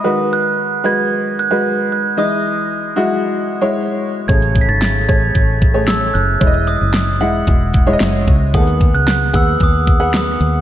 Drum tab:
HH |----------------|----------------|xxx-x-x-x-x-x-x-|xxx-x-x-x-x-x-x-|
SD |----------------|----------------|----o-------o---|----o-------o---|
BD |----------------|----------------|o-o---o-o-o-----|o-------o-o---o-|

HH |xxx-x-x-x-x-x-x-|
SD |----o-------o---|
BD |o-o---o-o-o-----|